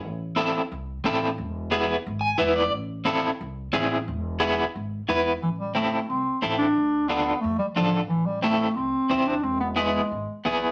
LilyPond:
<<
  \new Staff \with { instrumentName = "Clean electric guitar" } { \time 4/4 \key a \minor \tempo 4 = 179 r4 <c' e' a'>8 r4. <c' e' a'>8 r8 | r4 <b e' gis'>8 r4 gis''8 <b e' b' e''>8 d''8 | r4 <c' e' a'>8 r4. <c' e' gis'>8 r8 | r4 <b e' gis'>8 r4. <b e' b'>8 r8 |
r4 <c' e' a'>8 r4. <c' e' a'>8 r8 | r4 <d' f' a'>8 r4. <d' f' a'>8 r8 | r4 <c' e' a'>8 r4. <c' e' c''>8 r8 | r4 <b e' gis'>8 r4. <b e' gis'>8 r8 | }
  \new Staff \with { instrumentName = "Bass clarinet" } { \time 4/4 \key a \minor r1 | r1 | r1 | r1 |
e8 g8 a4 c'4 r8 d'8~ | d'4 b4 a8 g8 f8. r16 | e8 g8 a4 c'4. d'8 | c'8 b8 gis2 r4 | }
  \new Staff \with { instrumentName = "Upright bass" } { \clef bass \time 4/4 \key a \minor a,,2 c,4 a,,4 | e,,2 gis,,4 e,,4 | a,,2 c,4 a,,4 | e,,2 gis,,4 e,,4 |
a,,2 c,8 r8 a,,4 | d,2 f,8 r8 a,,4 | a,,2 c,8 r8 e,4 | e,,2 gis,,8 r8 b,,4 | }
>>